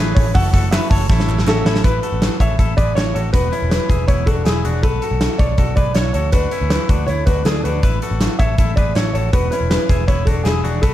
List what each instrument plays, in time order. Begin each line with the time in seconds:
Already playing: picked electric bass A1, steel-string acoustic guitar E3 A3, transistor combo organ E4 G#4 A4
0.00 steel-string acoustic guitar C#4 G#4, clean electric guitar G#4 B4, transistor combo organ C#5
0.15 picked electric bass A1, steel-string acoustic guitar A3 C#4 G#4, upright piano C#5, kick, hi-hat pedal, open hi-hat
0.34 picked electric bass F#1, steel-string acoustic guitar F#2 C#3 E3 A3 C#4 F#4, transistor combo organ E4 F#4 A4 C#5, clean electric guitar F#4 A4, upright piano F#5, kick, hi-hat pedal, open hi-hat
0.53 picked electric bass F#1, steel-string acoustic guitar E3 A3 C#4 F#4, clean electric guitar F#4 A4, kick, hi-hat pedal, open hi-hat
0.71 steel-string acoustic guitar E3 A3 C#4, transistor combo organ E4 F#4 A4 B4, clean electric guitar F#4 B4, upright piano E5, snare, clap, hi-hat pedal, open hi-hat
0.90 picked electric bass F#1, steel-string acoustic guitar E3 A3 C#4 F#4, clean electric guitar A4 C#5, upright piano A5, kick, hi-hat pedal, open hi-hat
1.08 picked electric bass A1, steel-string acoustic guitar A2 E3 A3 C#4 E4, transistor combo organ C#4 E4 A4 C#5, clean electric guitar E4 A4, kick, snare
1.20 snare
1.28 picked electric bass A1, steel-string acoustic guitar A3 C#4 E4, clap
1.39 snare
1.46 picked electric bass A1, steel-string acoustic guitar E3 A3 C#4, transistor combo organ C#4 E4 A4 E5, clean electric guitar C#4 F#4, upright piano A4, snare, clap
1.65 picked electric bass A1, steel-string acoustic guitar A3 C#4 E4, clean electric guitar C#4 E4, snare
1.76 snare
1.84 picked electric bass A1, clean electric guitar E4 B4, upright piano B4, kick, closed hi-hat
2.03 clean electric guitar F#4 A4, closed hi-hat
2.12 picked electric bass A1
2.22 snare, closed hi-hat
2.40 picked electric bass A1, clean electric guitar A4 C#5, upright piano E5, kick, closed hi-hat
2.59 picked electric bass A1, clean electric guitar E4 A4, kick, closed hi-hat
2.77 picked electric bass A1, clean electric guitar G#4 B4, upright piano D5, kick, closed hi-hat
2.95 picked electric bass A1, clean electric guitar A4 C#5, upright piano C#5, snare, closed hi-hat
3.14 picked electric bass A1, clean electric guitar F#4 A4, upright piano C#5, closed hi-hat
3.33 picked electric bass E1, clean electric guitar B3 F#4, upright piano B4, kick, closed hi-hat
3.52 clean electric guitar C#4 E4, closed hi-hat
3.62 picked electric bass E1
3.70 upright piano B4, snare, closed hi-hat
3.89 picked electric bass E1, clean electric guitar E4 G#4, kick, closed hi-hat
4.08 picked electric bass E1, clean electric guitar B3 E4, upright piano C#5, kick, closed hi-hat
4.26 picked electric bass E1, clean electric guitar D4 F#4, upright piano A4, kick, closed hi-hat
4.45 picked electric bass E1, clean electric guitar E4 G#4, upright piano G#4, snare, closed hi-hat
4.65 picked electric bass E1, clean electric guitar D4 F#4, closed hi-hat
4.83 picked electric bass B1, clean electric guitar F#4 B4, upright piano A4, kick, closed hi-hat
5.02 clean electric guitar F#4 A4, closed hi-hat
5.11 picked electric bass B1
5.21 snare, closed hi-hat
5.38 picked electric bass B1, clean electric guitar A4 C#5, upright piano D5, kick, closed hi-hat
5.58 picked electric bass B1, clean electric guitar F#4 A4, kick, closed hi-hat
5.76 picked electric bass B1, clean electric guitar G#4 B4, upright piano D5, kick, closed hi-hat
5.94 picked electric bass B1, clean electric guitar A4 C#5, upright piano C#5, snare, closed hi-hat
6.13 picked electric bass D2, clean electric guitar F#4 A4, upright piano C#5, closed hi-hat
6.32 clean electric guitar D4 F#4, upright piano B4, kick, closed hi-hat
6.51 clean electric guitar C#4 E4, closed hi-hat
6.61 picked electric bass D2
6.70 upright piano B4, snare, closed hi-hat
6.89 picked electric bass D2, clean electric guitar D4 F#4, kick, closed hi-hat
7.07 picked electric bass D2, clean electric guitar A3 E4, upright piano C#5, closed hi-hat
7.26 picked electric bass D2, clean electric guitar D4 F#4, upright piano B4, kick, closed hi-hat
7.45 picked electric bass D2, clean electric guitar D4 G#4, upright piano A4, snare, closed hi-hat
7.64 picked electric bass D2, clean electric guitar D4 F#4, upright piano B4, closed hi-hat
7.83 picked electric bass A1, clean electric guitar E4 B4, kick, closed hi-hat
8.02 clean electric guitar F#4 A4, closed hi-hat
8.11 picked electric bass A1
8.21 snare, closed hi-hat
8.39 picked electric bass A1, clean electric guitar A4 C#5, upright piano E5, kick, closed hi-hat
8.58 picked electric bass A1, clean electric guitar E4 A4, kick, closed hi-hat
8.76 picked electric bass A1, clean electric guitar G#4 B4, upright piano D5, kick, closed hi-hat
8.95 picked electric bass A1, clean electric guitar A4 C#5, upright piano C#5, snare, closed hi-hat
9.14 picked electric bass A1, clean electric guitar F#4 A4, upright piano C#5, closed hi-hat
9.33 clean electric guitar B3 F#4, upright piano B4, kick, closed hi-hat
9.51 clean electric guitar C#4 E4, upright piano B4, closed hi-hat
9.61 picked electric bass E1
9.70 upright piano B4, snare, closed hi-hat
9.89 picked electric bass E1, clean electric guitar E4 G#4, kick, closed hi-hat
10.08 picked electric bass E1, clean electric guitar B3 E4, upright piano C#5, kick, closed hi-hat
10.25 picked electric bass E1, clean electric guitar D4 F#4, upright piano A4, kick, closed hi-hat
10.44 picked electric bass E1, clean electric guitar E4 G#4, upright piano G#4, snare, closed hi-hat
10.64 picked electric bass E1, clean electric guitar D4 F#4, closed hi-hat
10.82 picked electric bass B1, clean electric guitar F#4 B4, upright piano A4, kick, closed hi-hat